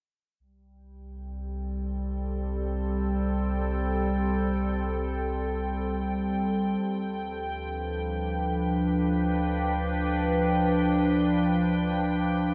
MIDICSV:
0, 0, Header, 1, 3, 480
1, 0, Start_track
1, 0, Tempo, 500000
1, 12041, End_track
2, 0, Start_track
2, 0, Title_t, "Ambient pad"
2, 0, Program_c, 0, 92
2, 391, Note_on_c, 0, 55, 76
2, 683, Note_on_c, 0, 79, 74
2, 988, Note_on_c, 0, 69, 62
2, 1007, Note_on_c, 0, 60, 76
2, 6527, Note_on_c, 0, 53, 70
2, 6533, Note_off_c, 0, 60, 0
2, 6537, Note_off_c, 0, 55, 0
2, 6738, Note_on_c, 0, 71, 81
2, 7045, Note_on_c, 0, 62, 73
2, 8990, Note_off_c, 0, 69, 0
2, 12041, Note_off_c, 0, 53, 0
2, 12041, Note_off_c, 0, 62, 0
2, 12041, Note_off_c, 0, 71, 0
2, 12041, Note_off_c, 0, 79, 0
2, 12041, End_track
3, 0, Start_track
3, 0, Title_t, "Sub bass"
3, 0, Program_c, 1, 38
3, 384, Note_on_c, 1, 36, 80
3, 6494, Note_off_c, 1, 36, 0
3, 6527, Note_on_c, 1, 38, 79
3, 12041, Note_off_c, 1, 38, 0
3, 12041, End_track
0, 0, End_of_file